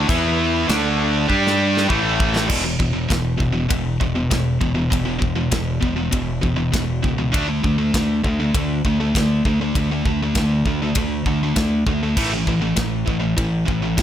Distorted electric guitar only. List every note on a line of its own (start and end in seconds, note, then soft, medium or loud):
0.08 0.67 E3 loud
0.08 0.68 B3 loud
0.08 0.68 E4 loud
0.68 1.28 D3 medium
0.68 1.27 A3 medium
0.68 1.27 D4 medium
1.28 1.88 G3 medium
1.28 1.88 D4 loud
1.28 1.88 G4 loud
1.88 2.48 A2 medium
1.88 2.47 E3 loud
1.88 2.49 A3 loud
2.47 2.62 E2 medium
2.47 2.62 B2 medium
2.47 2.62 E3 medium
2.64 2.78 E2 medium
2.64 2.78 B2 medium
2.79 2.92 E2 medium
2.79 2.92 B2 medium
2.93 3.07 E2 medium
2.93 3.07 B2 medium
3.08 3.37 E2 medium
3.08 3.36 B2 medium
3.38 3.52 E2 medium
3.38 3.51 B2 medium
3.52 3.68 E2 medium
3.52 3.68 B2 medium
3.69 3.97 E2 medium
3.69 3.97 B2 medium
4.00 4.14 E2 medium
4.00 4.14 B2 medium
4.15 4.29 E2 medium
4.15 4.29 B2 medium
4.30 4.58 E2 medium
4.30 4.58 B2 medium
4.60 4.74 E2 medium
4.60 4.73 B2 medium
4.75 4.89 E2 medium
4.75 4.90 B2 medium
4.90 5.04 E2 medium
4.90 5.04 B2 medium
5.05 5.19 E2 medium
5.05 5.18 B2 medium
5.19 5.35 E2 medium
5.19 5.35 B2 medium
5.36 5.50 E2 medium
5.36 5.50 B2 medium
5.51 5.79 E2 medium
5.51 5.79 B2 medium
5.80 5.95 E2 medium
5.80 5.95 B2 medium
5.96 6.10 E2 medium
5.96 6.10 B2 medium
6.11 6.39 E2 medium
6.11 6.39 B2 medium
6.41 6.56 E2 medium
6.41 6.55 B2 medium
6.56 6.71 E2 medium
6.56 6.71 B2 medium
6.72 7.00 E2 medium
6.72 7.00 B2 medium
7.02 7.17 E2 medium
7.02 7.17 B2 medium
7.18 7.33 E2 medium
7.18 7.31 B2 medium
7.32 7.46 D3 medium
7.32 7.46 A3 loud
7.32 7.46 D4 loud
7.48 7.62 D3 medium
7.48 7.62 A3 medium
7.63 7.77 D3 medium
7.63 7.77 A3 medium
7.78 7.93 D3 medium
7.78 7.93 A3 medium
7.94 8.21 D3 medium
7.94 8.21 A3 medium
8.24 8.39 D3 medium
8.24 8.39 A3 medium
8.40 8.53 D3 medium
8.40 8.54 A3 medium
8.55 8.81 D3 medium
8.55 8.82 A3 medium
8.85 8.99 D3 medium
8.85 8.99 A3 medium
9.00 9.14 D3 medium
9.00 9.15 A3 medium
9.16 9.42 D3 medium
9.16 9.42 A3 medium
9.46 9.60 D3 medium
9.46 9.60 A3 medium
9.61 9.75 D3 medium
9.61 9.75 A3 medium
9.77 9.90 D3 medium
9.77 9.90 A3 medium
9.91 10.05 D3 medium
9.91 10.05 A3 medium
10.06 10.21 D3 medium
10.06 10.21 A3 medium
10.22 10.36 D3 medium
10.22 10.36 A3 medium
10.38 10.64 D3 medium
10.38 10.64 A3 medium
10.67 10.81 D3 medium
10.67 10.81 A3 medium
10.82 10.95 D3 medium
10.82 10.96 A3 medium
10.96 11.23 D3 medium
10.96 11.24 A3 medium
11.27 11.41 D3 medium
11.27 11.41 A3 medium
11.43 11.55 D3 medium
11.43 11.55 A3 medium
11.56 11.83 D3 medium
11.56 11.83 A3 medium
11.87 12.01 D3 medium
11.87 12.01 A3 medium
12.03 12.16 D3 medium
12.03 12.17 A3 medium
12.17 12.30 A2 medium
12.17 12.30 E3 medium
12.17 12.31 A3 medium
12.33 12.46 A2 medium
12.33 12.46 E3 medium
12.48 12.60 A2 medium
12.48 12.60 E3 medium
12.61 12.75 A2 medium
12.61 12.75 E3 medium
12.76 13.04 A2 medium
12.76 13.04 E3 medium
13.06 13.19 A2 medium
13.06 13.18 E3 medium
13.19 13.35 A2 medium
13.19 13.35 E3 medium
13.37 13.64 A2 medium
13.37 13.64 E3 medium
13.66 13.82 A2 medium
13.66 13.82 E3 medium
13.83 13.97 A2 medium
13.83 13.98 E3 medium
13.98 14.02 A2 medium
13.98 14.02 E3 medium